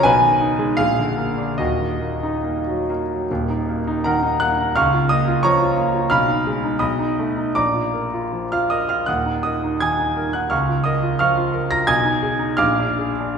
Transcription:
\new Staff \with { instrumentName = "Grand piano" } { \time 2/4 \key ees \minor \tempo 4 = 82 << { <ces'' aes''>4 <aes' f''>4 | <ges' ees''>4. r8 | r4 <bes' ges'' bes''>8 <ges'' ges'''>8 | <f'' des''' f'''>8 <ees'' ees'''>8 <des'' bes'' des'''>4 |
<f'' ces''' f'''>4 <dis'' b'' dis'''>4 | <d'' bes'' d'''>4~ <d'' bes'' d'''>16 <f'' f'''>16 <ees'' ees'''>16 <f'' f'''>16 | <ges'' ees''' ges'''>8 <ees'' ees'''>8 <aes'' ees''' aes'''>8. <ges'' ges'''>16 | <f'' des''' f'''>8 <ees'' ees'''>8 <f'' des''' f'''>8. <bes'' bes'''>16 |
<aes'' ees''' aes'''>4 <f'' d''' f'''>4 | } \\ { ces,16 ees16 ees'16 aes16 bes,,16 d16 bes16 d'16 | <ees,, ees,>16 ees16 bes16 ees'16 bes16 ges16 bes16 ges16 | <ees,, ees,>16 ees'16 bes16 ees'16 ees16 ees'16 bes16 ees'16 | des,16 f'16 bes16 f'16 f16 f'16 bes16 f'16 |
ces,16 ees'16 aes16 ees'16 b,,16 dis'16 a16 dis'16 | bes,,16 f'16 bes'16 f'16 f16 f'16 bes'16 f'16 | <ees,, ees,>16 ees'16 bes'16 ees'16 ees16 ees'16 bes'16 ees'16 | des,16 f'16 bes'16 f'16 f16 f'16 bes'16 f'16 |
ces,16 ees'16 aes'16 ees'16 bes,,16 d'16 aes'16 d'16 | } >> }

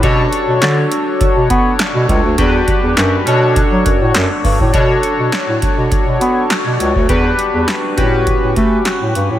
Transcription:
<<
  \new Staff \with { instrumentName = "Analog polysynth" } { \time 4/4 \key b \minor \tempo 4 = 102 <d' fis' a' cis''>1 | <d' fis' g' b'>4. <cis' d' fis' a' cis''>2~ <cis' d' fis' a' cis''>8 | <d' fis' a' cis''>1 | <d' fis' g' b'>4. <cis' fis' g' b'>2~ <cis' fis' g' b'>8 | }
  \new Staff \with { instrumentName = "Bass clarinet" } { \clef bass \time 4/4 \key b \minor b,8 r16 b,16 d8 r8. b,16 b8 r16 b,16 cis,16 d,16 | e,8 r16 e,16 fis,8 b,8. fis16 fis,16 a,16 fis,16 r16 g,16 a,16 | b,8 r16 b,16 r16 a,16 r16 b,16 r16 b,16 b8 r16 b,16 cis,16 d,16 | e,8 r16 e,16 r8 a,8. a,16 a8 r16 a,16 g,16 a,16 | }
  \new DrumStaff \with { instrumentName = "Drums" } \drummode { \time 4/4 <hh bd>8 hh8 <hc hh sn>8 hh8 <hh bd>8 <hh bd>8 <hc hh sn>8 <hh bd>8 | <hh bd>8 <hh bd>8 <hc hh sn>8 hh8 <hh bd>8 <hh bd>8 <hc hh sn>8 <hho bd>16 bd16 | <hh bd>8 hh8 <hc hh sn>8 <hh bd>8 <hh bd>8 hh8 <hc hh sn>8 hh16 bd16 | <hh bd>8 hh8 <hc hh sn>8 <hh bd>8 <hh bd>8 <hh bd>8 <hc hh sn>8 hh8 | }
>>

